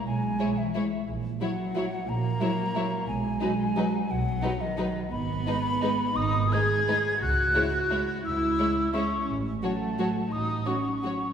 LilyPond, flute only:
\new Staff \with { instrumentName = "Flute" } { \time 3/4 \key b \major \tempo 4 = 174 gis''4. e''4. | r4 fis''2 | ais''2. | gis''2. |
fis''4. dis''4. | \key gis \phrygian b''2. | dis'''4 gis'''2 | fis'''2 r4 |
e'''2 cis'''4 | r4 a''2 | dis'''4 cis'''2 | }